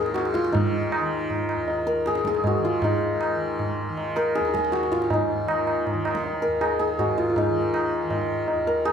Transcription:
Already playing: D#2 G#2 D#3 D#4 F4 G#4 A#4
0.06 tabla te
0.14 F#4, tabla te
0.25 tabla te
0.34 F4, tabla ke
0.44 tabla te
0.49 D#3 D#4
0.55 tabla tin, tabla ge
0.92 tabla na
1.01 D#3
1.30 tabla tin, tabla ge
1.49 tabla na
1.55 D#2
1.68 tabla tin
1.87 A#4
2.06 G#2 G#4, tabla te
2.15 tabla te
2.25 G#4, tabla ke
2.35 tabla te
2.44 F#4, tabla tin, tabla ge
2.58 D#3
2.65 F4
2.82 G#2 D#4, tabla tin, tabla ge
3.21 tabla na
3.35 D#3
3.59 tabla tin, tabla ge
3.89 D#3
3.97 tabla tin
4.16 A#4, tabla na
4.35 G#4, tabla te
4.40 D#2
4.45 tabla te
4.54 G#4, tabla ke
4.65 tabla te
4.72 F#4, tabla te
4.83 tabla te
4.92 G#2 F4, tabla ke
5.02 tabla te
5.10 D#4, tabla tin, tabla ge
5.45 D#3, tabla na
5.67 tabla na
5.87 tabla tin, tabla ge
5.93 D#3
6.05 tabla na
6.15 tabla ke
6.24 tabla tin
6.42 A#4
6.46 D#2
6.61 G#4, tabla na
6.79 G#4
6.98 G#2 F#4, tabla tin, tabla ge
7.18 F4
7.29 F4
7.36 D#4, tabla tin, tabla ge
7.49 D#3
7.74 tabla na
8.02 D#3
8.11 tabla tin, tabla ge
8.48 tabla tin
8.53 D#2
8.67 A#4
8.85 G#4, tabla na

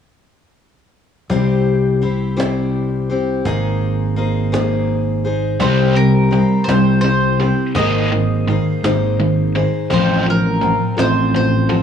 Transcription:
1.29 C2 C3 G3 C4 E4 G4 C5, cajon bass
1.66 cajon slap
2.01 C4 E4 G4 C5, cajon slap
2.37 C3 G3 C4 E4 G4 C5, cajon slap
2.74 cajon slap
3.09 C4 E4 G4 C5, cajon slap
3.45 G#1 G#3 A#3 D#4 G#4 C5, cajon bass
3.81 cajon slap
4.16 A#3 D#4 G#4 C5, cajon slap
4.52 G#3 A#3 D#4 G#4 C5, cajon slap
4.88 cajon slap
5.24 D#4 G#4 C5, cajon slap
5.60 C2 C3 G3 C4 E4 G4 C5, cajon bass
5.95 C3 G3 A#4
6.31 C3 G3 C4 E4 G4 C5, cajon slap
6.64 C2 C5
6.68 C3 G3 C4 E4 G4, cajon slap
7.01 C3 G3 C5, cajon slap
7.39 C3 G3 E4 G4 C5, cajon slap
7.44 C4
7.75 G#1 G#2 D#3 G#3 A#3 D#4 D#5, cajon bass
7.79 G#4 C5
8.11 G#2 D#3, cajon slap
8.47 G#2 D#3 A#3 D#4 G#4 C5, cajon slap
8.83 G#1 G#2 D#3 G#3 A#3 D#4 G#4 C5, cajon slap
9.19 G#2 D#3, cajon slap
9.55 G#2 D#3 D#4 G#4 C5, cajon slap
9.90 A1 A2 F3 C4 F4 C5, cajon bass
10.26 A2 F3 A#4, cajon slap
10.61 A2 F3 C4 F4, cajon slap
10.97 A1 A2 F3 A3 C4 F4 A4 C5, cajon slap
11.33 A2 F3 C5, cajon slap
11.69 A2 F3 A3 C4 F4 A4, cajon slap

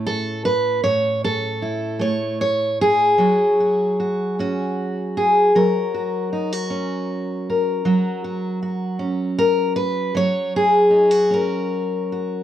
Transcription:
Already playing: A2 A3 C#4 E4
0.06 A4
0.45 B4
0.84 A2 C#5
1.24 A4
1.62 E4
1.99 A3 C#5
2.41 C#5
2.81 G#4
3.18 F#3 F#4
3.60 F#4
4.00 F#4
4.39 C#4 F#4
5.17 G#4
5.55 F#3 A#4
5.94 F#4
6.33 D#4
6.52 F#4
6.70 C#4
7.50 A#4
7.85 F#3 F#4
8.24 F#4
8.62 F#4
8.99 C#4
9.39 A#4
9.76 B4
10.15 F#3 C#5
10.56 G#4
10.90 D#4
11.11 F#4
11.30 C#4 A#4
12.12 F#4

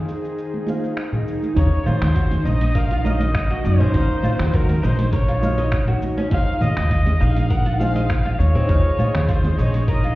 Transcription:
Already playing: D#3 D#4 F4 G#4 C5 F5
0.09 shaker
0.24 shaker
0.38 shaker
0.54 muted conga
0.65 D#4 F4 G#4 C5 F5, muted conga, high conga, shaker
0.84 shaker
0.97 finger snap, shaker
1.13 muted conga, low conga, shaker
1.28 shaker
1.42 muted conga, shaker
1.54 D#2 F#3 C#4 D#4 A#4 C#5, kick, closed hi-hat, shaker
1.59 F5
1.86 F4 C5, high conga, low conga, shaker
2.02 D#2, finger snap, closed hi-hat, low conga, shaker
2.07 F#3
2.16 F#4, kick, closed hi-hat, shaker
2.31 closed hi-hat, muted conga, low conga, shaker
2.43 A#1 C#4 D#4 D#5, shaker
2.61 closed hi-hat, muted conga, shaker
2.75 A#4 F5, kick, closed hi-hat, shaker
2.91 F4, closed hi-hat
3.02 F#3 D#4 A#4 C#5 D#5, muted conga, shaker
3.06 F5
3.20 D#5, closed hi-hat, muted conga, shaker
3.35 finger snap, kick, closed hi-hat, shaker
3.44 D#5
3.50 F#4
3.64 F#2 C5, muted conga, shaker
3.80 C#4, low conga, shaker
3.92 D#2 F#3 C#4 D#4 A#4, kick, closed hi-hat, shaker
3.96 F5
4.23 F4, high conga, low conga, shaker
4.39 D#2, finger snap, closed hi-hat, low conga, shaker
4.53 F#4 A#4, kick, closed hi-hat, shaker
4.69 closed hi-hat, muted conga, low conga, shaker
4.83 A#1 D#4 C5, shaker
4.99 closed hi-hat, muted conga, shaker
5.13 A#4 C#5, kick, closed hi-hat, shaker
5.28 F4, closed hi-hat
5.40 F#3 D#4 A#4 C#5, muted conga, high conga, shaker
5.44 F5
5.58 D#5, closed hi-hat, shaker
5.72 finger snap, kick, closed hi-hat, shaker
5.88 F#4, low conga
6.02 high conga, shaker
6.17 C#4, muted conga, shaker
6.29 D#2 D#4 F4 G#4 C5 F5, kick, closed hi-hat, shaker
6.34 F5
6.61 F4 D#5, high conga, low conga, shaker
6.77 D#2, finger snap, closed hi-hat, low conga, shaker
6.82 G#4
6.91 F4, kick, closed hi-hat, shaker
7.06 closed hi-hat, muted conga, low conga, shaker
7.20 A#1 D#4 F5, shaker
7.36 closed hi-hat, muted conga, shaker
7.50 A#4 F#5, kick, closed hi-hat, shaker
7.66 F4, closed hi-hat
7.78 D#4 F4 G#4 C5 F5, muted conga, shaker
7.82 F5
7.95 D#5, closed hi-hat, muted conga, shaker
8.10 finger snap, kick, closed hi-hat, shaker
8.26 F4
8.39 D#2 C#5, muted conga, shaker
8.55 C4, low conga, shaker
8.67 D#2 D#4 F4 G#4 D#5, kick, closed hi-hat, shaker
8.71 F5
8.99 F4, high conga, low conga, shaker
9.15 D#2, finger snap, closed hi-hat, low conga, shaker
9.28 F4 C5, kick, closed hi-hat, shaker
9.44 closed hi-hat, muted conga, low conga, shaker
9.58 A#1 D#4 C#5, shaker
9.74 closed hi-hat, muted conga, shaker
9.88 A#4 D#5, kick, closed hi-hat, shaker
10.04 F4, closed hi-hat

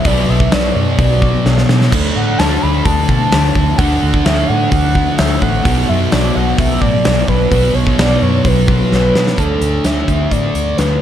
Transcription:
0.05 B1 B2 F#3 B3 D5, kick, open hi-hat
0.29 B1 E5
0.40 kick
0.52 B1 D5, snare, open hi-hat
0.76 F#2
0.99 B1 D5, kick, open hi-hat
1.22 kick
1.46 B1, snare
1.58 snare
1.69 B2, snare
1.81 snare
1.92 D2 D3 A3 D4, kick, crash
2.15 A2 F#5
2.39 D2 A5, snare, open hi-hat
2.62 D2 B5
2.85 D2 A5, kick, open hi-hat
3.09 B2, kick
3.32 D2, snare, open hi-hat
3.55 D2, kick
3.78 D2 D3 A3 D4 F#5, kick, open hi-hat
4.03 D2
4.14 kick
4.25 D2 E5, snare, open hi-hat
4.48 A2 F#5
4.70 D2 F#5, kick, open hi-hat
4.95 kick
5.18 D2 E5, snare, open hi-hat
5.41 A1 F#5, kick
5.64 B1 B2 F#3 B3, kick, open hi-hat
5.89 F#2 E5
6.11 B1 D5, snare, open hi-hat
6.35 B1 F#5
6.58 B1 E5, kick, open hi-hat
6.81 A2 D5, kick
7.05 B1, snare, open hi-hat
7.28 B1 B4, kick
7.51 B1 B2 F#3 B3 B4, kick, open hi-hat
7.74 B1 C#5
7.87 kick
7.98 B1 D5, snare, open hi-hat
8.22 F#2 C#5
8.45 B1 B4, kick, open hi-hat
8.68 kick
8.92 B1 B4, snare
9.15 B2, snare
9.27 snare
9.37 D2 D3 A3 D4 A4, kick, closed hi-hat
9.61 D2, closed hi-hat
9.84 D2 E5, snare, closed hi-hat
10.08 D2, kick, closed hi-hat
10.31 A2 D5, kick, closed hi-hat
10.55 D2, closed hi-hat
10.77 D2 B4, snare, closed hi-hat

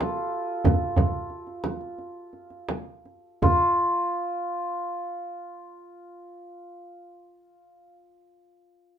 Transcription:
Already playing: F4 A4
0.01 tombak tek, frame drum
0.64 tombak dum, frame drum
0.96 tombak dum, frame drum
1.13 tombak ka
1.30 tombak ka
1.47 tombak ka
1.64 frame drum
1.81 tombak ka
1.98 tombak ka
2.33 tombak ka
2.50 tombak ka
2.69 tombak tek, frame drum
3.05 tombak ka
3.42 F4, tombak dum, frame drum

